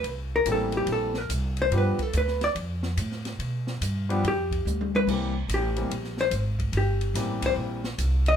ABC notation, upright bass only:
X:1
M:4/4
L:1/8
Q:"Swing" 1/4=144
K:C
V:1 name="Upright bass" clef=bass
C,,2 A,,,2 _B,,,2 C,,2 | G,, z D,,2 F,,2 A,,2 | B,,2 G,,2 F,,2 D,,2 | C,,2 A,,,2 _B,,,2 _A,,,2 |
G,,,2 A,,,2 _B,,,2 C,,2 |]